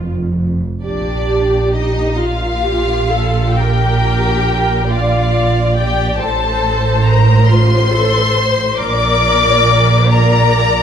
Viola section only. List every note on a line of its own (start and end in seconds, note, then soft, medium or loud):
0.00 0.12 F4 medium
0.84 2.16 G4 medium
2.20 2.65 F4 soft
2.65 3.10 G4 soft
3.10 3.55 A4 medium
3.56 4.90 A#4 medium
4.90 6.18 D5 medium
6.20 7.47 C5 medium
7.50 7.92 F4 medium
7.93 8.36 A4 medium
8.36 8.79 C5 medium
8.79 10.09 A#4 medium
10.09 10.83 D5 medium